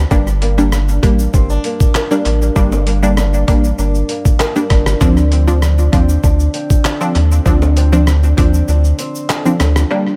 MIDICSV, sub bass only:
0, 0, Header, 1, 2, 480
1, 0, Start_track
1, 0, Tempo, 612245
1, 88, Time_signature, 4, 2, 24, 8
1, 7969, End_track
2, 0, Start_track
2, 0, Title_t, "Sub bass"
2, 0, Program_c, 0, 38
2, 87, Note_on_c, 0, 31, 120
2, 776, Note_off_c, 0, 31, 0
2, 809, Note_on_c, 0, 33, 102
2, 1001, Note_off_c, 0, 33, 0
2, 1049, Note_on_c, 0, 31, 113
2, 1241, Note_off_c, 0, 31, 0
2, 1767, Note_on_c, 0, 33, 90
2, 1960, Note_off_c, 0, 33, 0
2, 2007, Note_on_c, 0, 31, 114
2, 2696, Note_off_c, 0, 31, 0
2, 2729, Note_on_c, 0, 33, 102
2, 2921, Note_off_c, 0, 33, 0
2, 2967, Note_on_c, 0, 31, 102
2, 3160, Note_off_c, 0, 31, 0
2, 3688, Note_on_c, 0, 31, 104
2, 3880, Note_off_c, 0, 31, 0
2, 3928, Note_on_c, 0, 38, 112
2, 4616, Note_off_c, 0, 38, 0
2, 4649, Note_on_c, 0, 39, 100
2, 4841, Note_off_c, 0, 39, 0
2, 4889, Note_on_c, 0, 38, 107
2, 5081, Note_off_c, 0, 38, 0
2, 5607, Note_on_c, 0, 39, 100
2, 5800, Note_off_c, 0, 39, 0
2, 5848, Note_on_c, 0, 38, 117
2, 6536, Note_off_c, 0, 38, 0
2, 6569, Note_on_c, 0, 39, 99
2, 6761, Note_off_c, 0, 39, 0
2, 6807, Note_on_c, 0, 38, 110
2, 7000, Note_off_c, 0, 38, 0
2, 7527, Note_on_c, 0, 38, 94
2, 7719, Note_off_c, 0, 38, 0
2, 7969, End_track
0, 0, End_of_file